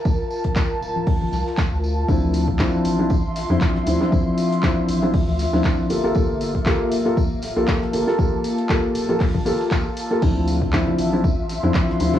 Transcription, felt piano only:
X:1
M:4/4
L:1/16
Q:"Swing 16ths" 1/4=118
K:Dm
V:1 name="Felt piano"
z16 | [F,CDE]4 [F,CDE]3 [F,CDE] z3 [F,CDE]3 [F,CDE] [F,CDE] | [F,CDE]4 [F,CDE]3 [F,CDE] z3 [F,CDE]3 [B,FGA] [B,FGA] | [B,FGA]4 [B,FGA]3 [B,FGA] z3 [B,FGA]3 [B,FGA] [B,FGA] |
[B,FGA]4 [B,FGA]3 [B,FGA] z2 [B,FGA]4- [B,FGA] [B,FGA] | [F,CDE]4 [F,CDE]3 [F,CDE] z3 [F,CDE]3 [F,CDE] [F,CDE] |]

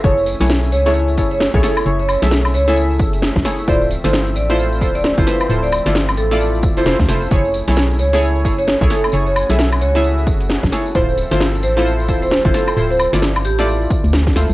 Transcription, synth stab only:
X:1
M:4/4
L:1/16
Q:"Swing 16ths" 1/4=132
K:F#m
V:1 name="Synth stab"
[EGAc] z2 [EGAc] z3 [EGAc]3 [EGAc] z2 [EGAc] [EGAc] z | [EGAc] z2 [EGAe] z3 [EGAe]6- [EGAe] [EGAc] z | [E=FA=c] z2 [EFAc] z3 [EFAc]3 [EFAc] z2 [EFAc] [EFAc] z | [E=FA=c] z2 [EFAd] z3 [EFAd]4 [EFAc] [EFAc] z [EFAc] z |
[EGAc] z2 [EGAc] z3 [EGAc]3 [EGAc] z2 [EGAc] [EGAc] z | [EGAc] z2 [EGAe] z3 [EGAe]6- [EGAe] [EGAc] z | [E=FA=c] z2 [EFAc] z3 [EFAc]3 [EFAc] z2 [EFAc] [EFAc] z | [E=FA=c] z2 [EFAd] z3 [EFAd]6- [EFAd] [EFAc] z |]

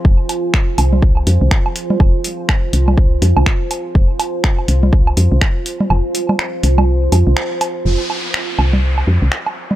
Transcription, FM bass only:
X:1
M:4/4
L:1/16
Q:"Swing 16ths" 1/4=123
K:Fm
V:1 name="FM bass" clef=bass
F,,, z4 z C,,4 F,, C,, z4 | F,,, z4 z C,,4 F,, C,, z4 | F,,, z4 z C,,4 F,, C,, z4 | F,,, z4 z C,,4 F,, C,, z4 |
F,,, z4 z C,,4 F,, C,, z4 |]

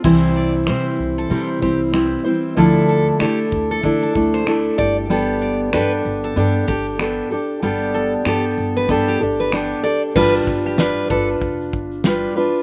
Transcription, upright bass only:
X:1
M:4/4
L:1/16
Q:"Swing 16ths" 1/4=95
K:Gmix
V:1 name="Upright bass" clef=bass
C,,4 C,2 C,,2 C,2 C,,4 z2 | D,,4 D,2 D,,2 D,2 D,,4 G,,,2- | G,,,4 G,,2 G,,,2 G,,2 G,,,4 z2 | G,,,4 G,,2 G,,,2 G,,2 G,,,4 z2 |
G,,,2 G,,,3 z G,,,2 F,,,2 G,,,4 z2 |]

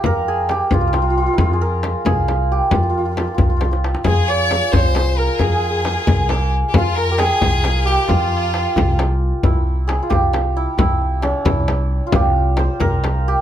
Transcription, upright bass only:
X:1
M:6/8
L:1/8
Q:3/8=89
K:none
V:1 name="Upright bass" clef=bass
F,,3 C,,3 | F,,3 C,,3 | F,,3 C,,3 | F,,3 C,,3 |
F,,3 C,,3 | F,,3 C,,3 | F,,3 C,,3 | C,,3 C,,3 |
C,,3 C,,3 | C,,3 C,,3 |]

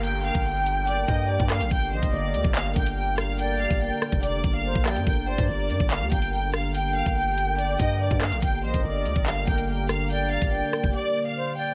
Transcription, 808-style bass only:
X:1
M:4/4
L:1/16
Q:1/4=143
K:Gm
V:1 name="808-style bass" clef=bass
G,,,3 G,,,6- G,,, G,,3 G,,2 B,,, | G,,,2 B,,, G,,, G,,,2 D,, G,,,3 G,,,6- | G,,,3 G,,,2 z2 F,,,3 G,,,3 B,,,2 G,, | G,,,3 G,, G,,,2 G,, G,,,2 D,, G,,,6- |
G,,,3 G,,,6- G,,, G,,3 G,,2 B,,, | G,,,2 B,,, G,,, G,,,2 D,, G,,,3 G,,,6- | G,,,3 G,,,2 z2 F,,, z8 |]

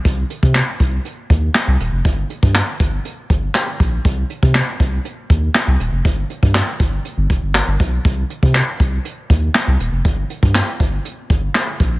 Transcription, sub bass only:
X:1
M:4/4
L:1/16
Q:1/4=120
K:Cm
V:1 name="Sub bass" clef=bass
C,,2 z C,2 z C,,2 z2 E,,2 z C,, E,,, F,,, | G,,,2 z G,,2 z G,,,2 z2 G,,,2 z2 B,,,2 | C,,2 z C,2 z C,,2 z2 E,,2 z C,, E,,, F,,, | G,,,2 z G,,2 z G,,,2 z G,,, F,,, G,,,2 G,,, =B,,,2 |
C,,2 z C,2 z C,,2 z2 E,,2 z C,, E,,, F,,, | G,,,2 z G,,2 z G,,,2 z2 G,,,2 z2 B,,,2 |]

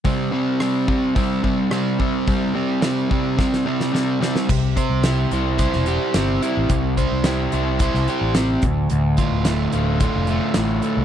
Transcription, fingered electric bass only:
X:1
M:4/4
L:1/16
Q:1/4=108
K:Cmix
V:1 name="Fingered electric bass" clef=bass
z16 | z16 | C,,2 z C,,3 C,,3 E,,,2 z G,,,2 z A,,, | C,,3 C,,3 C,,3 C,, z A,,,3 D,,,2 |
D,,,2 z D,,,3 D,,,3 F,,,2 z A,,,2 z C,, |]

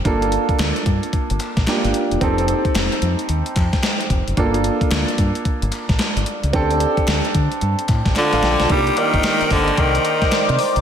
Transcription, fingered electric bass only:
X:1
M:4/4
L:1/16
Q:"Swing 16ths" 1/4=111
K:Gm
V:1 name="Fingered electric bass" clef=bass
G,,,3 z D,, z G,, z2 G,,, z B,,, z G,,, z =E,,, | F,,,3 z F,,, z F,, z E,, z F,, z3 F,,, ^F,,, | G,,,3 z D,, z G,, z2 G,,, z B,,, z G,,, z ^C,, | D,,3 z D,, z D, z G,, z A,, A,,, z A,,, B,,, =B,,, |
C,,2 z G,,, z2 G,,,2 C,,2 z3 C, z =B,,, |]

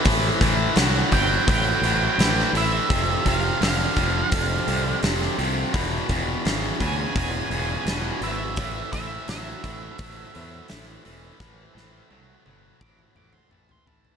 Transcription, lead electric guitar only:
X:1
M:4/4
L:1/16
Q:1/4=85
K:Am
V:1 name="Lead electric guitar"
z6 g2 g6 e2- | e2 f2 f8 z4 | z6 ^g2 g6 e2- | e2 e2 e8 z4 |
z8 d' z d' c' a c' a2 |]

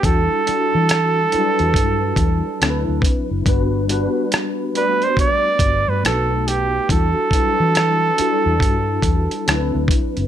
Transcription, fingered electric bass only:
X:1
M:4/4
L:1/16
Q:"Swing 16ths" 1/4=70
K:Em
V:1 name="Fingered electric bass" clef=bass
E,, z2 E,3 z E,, G,,2 E,, z D,, D,, z F,,, | G,,,3 z6 z G,,, G,, B,,,4 | E,, z2 E,3 z E,, G,,2 E,, z D,, D,, z F,,, |]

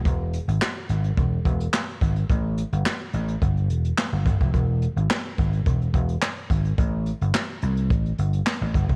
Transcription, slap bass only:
X:1
M:4/4
L:1/16
Q:1/4=107
K:Am
V:1 name="Slap bass" clef=bass
E,,,3 ^G,,, z2 G,,,2 E,,,2 E,,,2 z2 G,,,2 | A,,,3 G,,, z2 A,,,2 G,,,2 E,,,2 z G,,, G,,, F,,, | E,,,3 ^G,,, z2 G,,,2 E,,,2 E,,,2 z2 G,,,2 | A,,,3 G,,, z2 C,,2 A,,,2 G,,,2 z A,,, G,,, F,,, |]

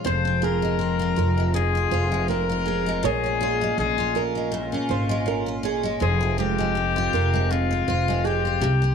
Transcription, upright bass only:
X:1
M:4/4
L:1/16
Q:"Swing 16ths" 1/4=80
K:Fm
V:1 name="Upright bass" clef=bass
F,,,6 F,,,4 F,,,6 | B,,,4 B,,,4- B,,, z A,,,6 | F,,,6 F,,,4 F,,,4 C,,2 |]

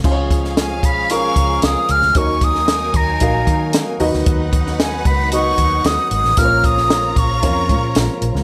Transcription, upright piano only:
X:1
M:4/4
L:1/8
Q:1/4=114
K:Dbmix
V:1 name="Upright piano"
[D,DFA=cd]3 z [DFAB]3 z | [E,EGBde]3 z [EGBf]3 [^D,^D^F=B^d]- | [^D,^D^F=B^d]2 z2 [DFBd]3 z | [B,,DFBcd]3 z [DFBd]3 z |]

